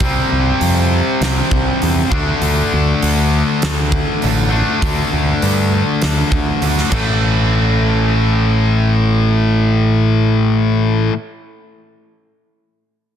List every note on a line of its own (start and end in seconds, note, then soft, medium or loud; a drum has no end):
0.00 0.20 C2 medium
0.00 2.09 C3 medium
0.00 2.10 G3 medium
0.00 kick medium
0.00 open hi-hat soft
0.05 2.11 C4 medium
0.32 0.51 C2 medium
0.61 1.00 F2 medium
0.61 open hi-hat soft
1.21 1.41 C2 medium
1.21 snare medium
1.21 open hi-hat soft
1.51 1.71 C2 medium
1.51 kick medium
1.82 2.02 E2 medium
1.82 open hi-hat soft
2.11 2.31 D2 medium
2.11 4.20 D3 medium
2.11 4.24 A3 medium
2.11 4.21 D4 medium
2.11 kick medium
2.42 2.61 D2 medium
2.42 open hi-hat soft
2.74 2.92 D2 medium
3.02 3.42 D2 medium
3.02 open hi-hat soft
3.62 4.02 D2 medium
3.62 snare medium
3.62 open hi-hat soft
3.92 kick medium
4.22 4.62 A1 medium
4.22 4.51 D3 medium
4.22 4.53 A3 medium
4.22 4.52 D4 medium
4.22 open hi-hat soft
4.52 6.60 D3 medium
4.52 6.61 A3 medium
4.52 6.62 D4 medium
4.82 5.01 D2 medium
4.82 kick medium
4.82 open hi-hat soft
5.13 5.32 D2 medium
5.42 5.82 G2 medium
5.42 open hi-hat soft
6.02 6.23 D2 medium
6.02 snare medium
6.02 open hi-hat soft
6.32 6.52 D2 medium
6.32 kick medium
6.62 6.82 D2 medium
6.62 6.91 D3 medium
6.62 6.91 A3 medium
6.62 6.92 D4 medium
6.62 open hi-hat soft
6.78 snare soft
6.91 11.09 A1 medium
6.91 11.13 A2 medium
6.91 11.13 E3 medium
6.91 11.14 A3 medium
6.91 kick medium
6.91 crash medium